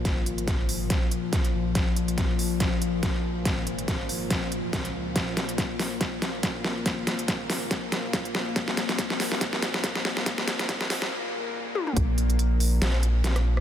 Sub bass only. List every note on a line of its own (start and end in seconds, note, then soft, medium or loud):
0.05 0.89 G#1 loud
1.54 1.74 A#1 medium
1.75 2.59 A#1 medium
2.60 3.44 A#1 medium
3.45 4.29 G#1 medium
4.31 4.72 A#1 loud
4.73 5.14 C#2 loud
5.16 5.99 A#1 medium
6.01 6.84 A#1 loud
6.86 7.69 G#1 medium
8.35 8.54 A#1 loud
8.56 9.40 A#1 loud
9.41 10.25 A#1 loud
10.26 11.10 G#1 loud
11.97 12.80 A#1 loud
12.82 13.61 A#1 loud